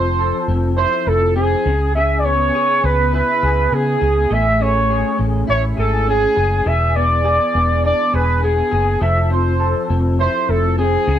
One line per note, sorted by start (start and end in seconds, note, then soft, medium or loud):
0.00 0.31 F1 loud
0.00 1.72 F3 medium
0.00 0.47 C4 medium
0.00 0.17 A4 medium
0.00 0.46 C5 medium
0.19 1.07 A4 medium
0.48 0.84 F1 loud
0.48 1.35 C4 medium
0.77 3.13 E4 medium
0.77 1.09 C5 loud
1.07 1.54 F1 medium
1.07 1.35 A4 medium
1.36 1.72 C4 medium
1.36 1.91 G#4 loud
1.66 2.49 C#2 medium
1.66 1.95 C#3 medium
1.95 4.31 C#3 medium
1.95 2.54 G#4 medium
1.95 2.21 E5 medium
2.19 2.27 D5 medium
2.25 2.83 B3 medium
2.25 2.87 C#5 loud
2.54 3.42 G#4 medium
2.84 3.20 C#2 loud
2.84 3.71 B3 medium
2.84 3.14 B4 loud
3.13 5.47 E4 medium
3.13 3.76 B4 medium
3.43 3.66 C#2 medium
3.43 4.01 G#4 medium
3.72 3.95 C#3 medium
3.72 4.37 B3 medium
3.72 4.35 G#4 medium
4.01 4.25 C#2 medium
4.01 4.31 G#4 medium
4.30 5.02 A1 loud
4.30 6.65 A3 medium
4.30 4.90 G#4 medium
4.30 4.64 E5 medium
4.60 5.17 C#4 medium
4.60 5.23 C#5 medium
4.90 5.77 G#4 medium
5.18 5.43 A1 loud
5.18 6.06 C#4 medium
5.47 5.72 A1 medium
5.47 7.84 E4 medium
5.47 5.63 C#5 loud
5.77 6.25 G#1 medium
5.77 6.36 G#4 medium
5.77 6.06 A4 loud
6.07 6.73 C#4 medium
6.07 6.69 G#4 loud
6.36 6.60 F#1 medium
6.36 6.66 G#4 medium
6.66 7.37 E1 loud
6.66 9.01 E3 medium
6.66 7.23 G#4 medium
6.66 6.97 E5 medium
6.96 7.54 B3 medium
6.96 7.84 D5 medium
7.24 8.12 G#4 medium
7.55 7.91 E1 loud
7.55 8.41 B3 medium
7.84 9.08 D4 medium
7.84 8.16 D5 loud
8.13 8.61 E1 medium
8.13 8.70 G#4 medium
8.13 8.43 B4 loud
8.43 9.08 B3 medium
8.43 8.98 G#4 loud
8.71 8.96 F#1 medium
8.71 9.01 G#4 medium
9.01 9.73 F1 loud
9.01 11.14 F3 medium
9.01 9.58 A4 medium
9.01 9.29 E5 medium
9.30 9.89 C4 medium
9.30 9.89 C5 medium
9.60 10.48 A4 medium
9.90 10.26 F1 loud
9.90 10.77 C4 medium
10.20 11.19 E4 medium
10.20 10.51 C5 loud
10.49 10.96 F1 medium
10.49 10.78 A4 medium
10.78 11.14 C4 medium
10.78 11.19 G#4 loud
11.07 11.19 C#2 medium
11.07 11.19 C#3 medium